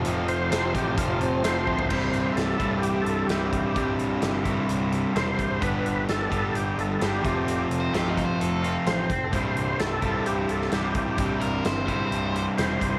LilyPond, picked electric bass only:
\new Staff \with { instrumentName = "Picked electric bass" } { \clef bass \time 4/4 \key c \major \tempo 4 = 129 f,,4 f,,8 a,,8 f,,8 f,,8 f,,8 d,,8 | c,,8 c,,8 c,,8 c,,8 c,,8 c,,8 c,,4 | c,,8 c,,8 g,,4 c,,4 e,,8 c,,8 | g,,8 g,,8 g,,8 g,,8 g,,8 g,,8 g,,8 f,,8 |
f,,8 f,,8 c,,4 f,,4 a,,8 f,,8 | c,,8 c,,8 c,,8 c,,8 c,,8 c,,8 c,,4 | c,,8 c,,8 g,,4 c,,4 e,,8 c,,8 | }